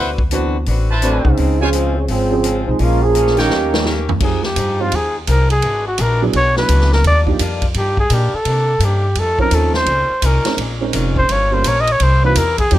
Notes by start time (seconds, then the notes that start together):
Already playing: D2 D3 C4 E4 F#4 B4 C5 F#5
0.00 B4
0.18 kick
0.31 D3 E3 B3 C4 D4 F#4 B4, closed hi-hat
0.66 A1 D3 C4 F#4, open hi-hat
0.71 B4
0.89 E4 B4 C5 A5
1.02 D3 F#3 A3 C4 D4 F#4 B4, closed hi-hat
1.23 C2 G#3 C4 C#4 D#4, kick
1.37 C#2 C#3 F3 G#3 C4, open hi-hat
1.60 F3 G#3 C4 C#4 F4 G#4 C5 C#5 G#5
1.73 C#3 F3 G#3 C4, closed hi-hat
1.95 C3 F3 G#3 C#4
2.08 G#1 C#3 F3 G#3 C4, open hi-hat
2.31 F3 G#3 C4 C#4 G#4
2.43 C#3 F3 G#3 C4, closed hi-hat
2.66 B1 F3 G#3 C4 D#4
2.79 A#1 A#2 F3 G#3 A#3 C#4 F4, open hi-hat
3.03 F3 A#3 C#4 G#4
3.15 A#2 F3 G#3 C#4, closed hi-hat
3.26 snare
3.37 D#3 G3 A#3 C#4 D#4 G4 A#4 C#5 G5, snare, open hi-hat
3.49 D#2 D#3 A#3 C#4 G4, snare
3.74 D#3 G3 A#3 C#4 G4, snare
3.85 D#3 A#3 C#4 G4, snare
4.09 floor tom
4.20 F2 F3 G#3 C4 D#4 G4 G#4, kick, crash
4.25 G4
4.43 G4, snare
4.56 G2 F3 G#3 D#4 G4, hi-hat pedal, ride
4.80 F3 G#3 C4 D#4 F4 G4
4.92 D#2 F3 G#3 D#4 G4 G#4, ride
5.27 C2 F3 G#3 D#4 G4 A#4, hi-hat pedal, ride
5.50 G#4, ride
5.62 G#1 E3 G#3 D4 F#4, ride
5.87 F#4
5.98 A#1 E3 G#3 D4 F#4 A#4, hi-hat pedal, ride
6.22 F#3 B3 D4 E4 G#4
6.33 B1 E3 G#3 D4 F#4 C#5, ride
6.56 F#3 B3 D4 E4 B4, snare
6.69 C#2 E3 G#3 D4 F#4, hi-hat pedal, ride
6.81 snare
6.92 A#4, snare
7.04 D#2 D#3 G3 D4 F4 D5, ride
7.26 F3 A#3 D4 D#4 G4, kick
7.39 F2 D#3 G3 D4 F4, hi-hat pedal, ride
7.62 kick, ride
7.74 G2 D#3 G3 D4 G4, ride
7.79 F4
7.97 G#4, kick
8.10 A#2 D#3 G3 D4 F4 G4, hi-hat pedal, ride
8.34 A4, muted upright bass stroke
8.45 C3 D#3 A#3, ride
8.49 D4
8.79 G2 C3 D#3 A#3, hi-hat pedal, ride
8.83 D4 G4
9.15 F2 D#3 A3 A4, ride
9.21 C#4
9.39 F3 C4 C#4 D#4 A4 A#4, kick
9.51 D#2 F2 D#3 A3 C#4 A4, hi-hat pedal, ride
9.74 C5, snare
9.86 C#2 A#2 D#3 G#3, ride
9.90 C#4
10.10 muted upright bass stroke
10.22 C2 A#2 D#3 G#3 C#4 A#4, hi-hat pedal, ride
10.45 G#3 C4 C#4 D#4 A#4, muted upright bass stroke, snare, ride
10.57 A#1 A#2 D#3 G#3, ride
10.62 C#4
10.81 G#3 C4 C#4 D#4 A#4
10.93 F1 A#2 D#3 G#3 C#4, hi-hat pedal, ride
11.16 C5, kick
11.29 G1 G2 F3 A#3 C#4 C#5, ride
11.51 G3 A#3 C#4 F4 A#4 C5
11.64 A#1 G2 F3 A#3 C#4 C#5, hi-hat pedal, ride
11.80 D#5
11.87 ride
11.92 C#5
12.00 C2 C3 A#3 E4 G#4 C5, ride
12.23 E3 A#3 C4 D#4 F#4 B4
12.35 E2 C3 A#3 E4 G#4 A#4, hi-hat pedal, ride
12.58 G#4, kick, ride
12.71 F2 F3 G#3 C4 D#4 G4, ride
12.75 G4